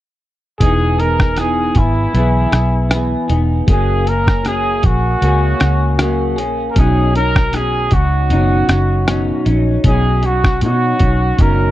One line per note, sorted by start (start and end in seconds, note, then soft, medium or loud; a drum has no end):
0.60 1.72 E1 medium
0.60 0.99 E3 medium
0.60 0.99 B3 medium
0.60 0.99 D#4 medium
0.60 1.01 G#4 medium
0.60 0.97 G#4 medium
0.60 kick medium
0.60 closed hi-hat medium
0.98 1.36 B3 soft
0.98 1.38 D#4 soft
0.98 1.37 G#4 soft
0.98 1.40 A#4 loud
0.98 closed hi-hat soft
1.20 kick medium
1.20 cross-stick medium
1.36 1.75 E3 medium
1.36 1.76 B3 medium
1.36 1.77 D#4 medium
1.36 1.79 G#4 medium
1.36 cross-stick medium
1.36 closed hi-hat medium
1.40 1.74 G#4 medium
1.75 2.06 G#1 medium
1.75 2.13 B3 soft
1.75 3.31 E4 medium
1.75 2.14 G#4 soft
1.75 kick medium
1.75 closed hi-hat soft
2.13 2.45 B1 medium
2.13 2.52 E3 medium
2.13 2.53 B3 medium
2.13 2.50 G#4 medium
2.13 closed hi-hat medium
2.51 3.14 B1 medium
2.51 2.90 B3 soft
2.51 2.90 G#4 soft
2.51 cross-stick medium
2.51 closed hi-hat soft
2.89 3.29 E3 medium
2.89 3.30 B3 medium
2.89 3.27 G#4 medium
2.89 cross-stick medium
2.89 closed hi-hat medium
3.28 3.60 E1 medium
3.28 3.67 B3 soft
3.28 3.68 D#4 soft
3.28 3.67 G#4 medium
3.28 closed hi-hat medium
3.67 4.80 F#1 medium
3.67 4.06 F#3 medium
3.67 4.07 A#3 medium
3.67 4.05 C#4 medium
3.67 4.03 G#4 medium
3.67 4.10 G#4 medium
3.67 kick medium
3.67 closed hi-hat medium
4.04 4.43 A#3 soft
4.04 4.44 C#4 soft
4.04 4.44 G#4 soft
4.04 4.48 A#4 medium
4.04 closed hi-hat soft
4.27 kick medium
4.27 cross-stick medium
4.43 4.83 F#3 medium
4.43 4.83 A#3 medium
4.43 4.83 C#4 medium
4.43 4.81 G#4 medium
4.43 4.87 G#4 medium
4.43 cross-stick medium
4.43 closed hi-hat medium
4.82 5.15 A#1 medium
4.82 5.21 A#3 soft
4.82 5.22 C#4 soft
4.82 6.39 F#4 medium
4.82 5.21 G#4 soft
4.82 kick medium
4.82 closed hi-hat medium
5.21 5.53 C#2 medium
5.21 5.60 F#3 medium
5.21 5.61 A#3 medium
5.21 5.60 C#4 medium
5.21 5.58 G#4 medium
5.21 closed hi-hat medium
5.59 6.37 C#2 medium
5.59 5.98 A#3 soft
5.59 5.99 C#4 soft
5.59 5.99 G#4 soft
5.59 cross-stick medium
5.59 closed hi-hat soft
5.98 6.37 F#3 medium
5.98 6.38 A#3 medium
5.98 6.37 C#4 medium
5.98 6.35 G#4 medium
5.98 cross-stick medium
5.98 closed hi-hat medium
6.36 6.68 A#1 medium
6.36 6.77 A#3 soft
6.36 6.76 C#4 medium
6.36 6.75 G#4 medium
6.36 closed hi-hat medium
6.71 6.80 A#4 medium
6.76 7.88 B1 loud
6.76 7.15 B2 medium
6.76 7.15 F#3 medium
6.76 7.15 C#4 medium
6.76 7.12 D#4 medium
6.76 7.15 G#4 medium
6.76 kick loud
6.76 closed hi-hat medium
7.14 7.53 C#4 soft
7.14 7.53 D#4 soft
7.14 7.57 A#4 loud
7.14 closed hi-hat soft
7.18 7.53 F#3 soft
7.36 kick medium
7.36 cross-stick medium
7.52 7.91 B2 medium
7.52 7.92 F#3 medium
7.52 7.92 C#4 medium
7.52 7.89 D#4 medium
7.52 7.94 G#4 medium
7.52 cross-stick medium
7.52 closed hi-hat medium
7.91 8.31 C#2 medium
7.91 8.29 F#3 soft
7.91 8.30 C#4 soft
7.91 8.30 D#4 soft
7.91 9.47 F#4 medium
7.91 kick medium
7.91 closed hi-hat soft
8.29 8.61 F#1 medium
8.29 8.68 B2 medium
8.29 8.69 F#3 medium
8.29 8.69 C#4 medium
8.29 8.67 D#4 medium
8.29 closed hi-hat medium
8.68 9.30 F#1 medium
8.68 9.06 F#3 soft
8.68 9.08 C#4 soft
8.68 9.07 D#4 soft
8.68 cross-stick medium
8.68 closed hi-hat soft
9.06 9.45 B2 medium
9.06 9.46 F#3 medium
9.06 9.46 C#4 medium
9.06 9.44 D#4 medium
9.06 cross-stick medium
9.06 closed hi-hat medium
9.45 9.77 A#1 medium
9.45 9.84 C#4 medium
9.45 9.84 D#4 medium
9.45 closed hi-hat medium
9.49 9.84 F#3 soft
9.84 10.64 B1 medium
9.84 10.23 B2 medium
9.84 10.23 F#3 medium
9.84 10.23 C#4 medium
9.84 10.21 D#4 medium
9.84 10.27 G#4 medium
9.84 kick loud
9.84 closed hi-hat medium
10.22 10.62 C#4 soft
10.22 10.61 D#4 soft
10.22 closed hi-hat soft
10.26 10.61 F#3 soft
10.26 10.62 F#4 medium
10.44 kick medium
10.44 cross-stick medium
10.61 11.00 B2 medium
10.61 10.93 B2 medium
10.61 11.00 F#3 medium
10.61 11.00 C#4 medium
10.61 11.42 F#4 medium
10.61 closed hi-hat medium
10.65 10.98 D#4 medium
10.99 11.31 B1 medium
10.99 11.37 F#3 soft
10.99 11.38 C#4 soft
10.99 11.38 D#4 soft
10.99 kick medium
10.99 closed hi-hat medium
11.38 11.70 F#1 medium
11.38 11.71 B2 medium
11.38 11.71 F#3 medium
11.38 11.71 C#4 medium
11.38 11.71 D#4 medium
11.38 11.71 A#4 loud
11.38 kick medium
11.38 closed hi-hat medium